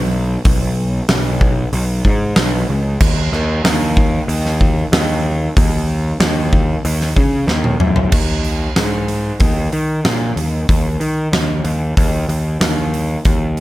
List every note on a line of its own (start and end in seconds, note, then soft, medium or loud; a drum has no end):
0.00 0.36 B1 medium
0.45 1.00 B1 medium
0.45 kick loud
0.45 open hi-hat medium
1.09 1.64 B1 medium
1.09 snare loud
1.09 open hi-hat medium
1.41 kick medium
1.73 2.00 B1 loud
1.73 open hi-hat medium
2.05 2.32 G#2 loud
2.05 kick medium
2.36 2.64 B1 medium
2.36 snare loud
2.36 open hi-hat medium
2.69 2.96 C#2 medium
3.00 3.28 D#2 medium
3.00 kick loud
3.00 crash medium
3.32 3.60 D#2 medium
3.32 snare soft
3.64 4.19 D#2 loud
3.64 snare loud
3.64 open hi-hat medium
3.97 kick medium
4.28 4.83 D#2 loud
4.28 open hi-hat medium
4.46 snare soft
4.61 kick medium
4.92 5.47 D#2 medium
4.92 snare loud
4.92 open hi-hat medium
5.57 6.11 D#2 loud
5.57 kick loud
5.57 open hi-hat medium
6.20 6.75 D#2 medium
6.20 snare loud
6.20 open hi-hat medium
6.53 kick medium
6.85 7.12 D#2 loud
6.85 open hi-hat medium
7.01 snare soft
7.16 7.44 C#3 medium
7.16 kick medium
7.47 7.75 D#2 medium
7.47 snare medium
7.64 high tom medium
7.80 8.12 F#2 medium
7.80 mid tom medium
7.96 floor tom loud
8.12 8.66 D#2 medium
8.12 kick loud
8.12 crash loud
8.45 open hi-hat soft
8.76 9.31 G#2 medium
8.76 snare loud
8.76 open hi-hat medium
9.08 open hi-hat medium
9.40 9.67 D#2 medium
9.40 kick loud
9.40 open hi-hat medium
9.73 10.00 D#3 medium
9.73 open hi-hat soft
10.05 10.32 A#2 medium
10.05 snare loud
10.05 open hi-hat medium
10.36 10.64 D#2 medium
10.36 open hi-hat medium
10.69 10.96 D#2 medium
10.69 kick loud
10.69 open hi-hat medium
11.00 11.28 D#3 medium
11.00 open hi-hat soft
11.33 11.60 D#2 medium
11.33 snare loud
11.33 open hi-hat medium
11.64 11.92 D#2 medium
11.64 open hi-hat medium
11.97 12.24 D#2 medium
11.97 kick loud
11.97 open hi-hat medium
12.29 12.56 D#2 medium
12.29 open hi-hat medium
12.61 13.15 D#2 medium
12.61 snare loud
12.61 open hi-hat medium
12.94 open hi-hat medium
13.25 13.60 D#2 medium
13.25 kick loud
13.25 open hi-hat medium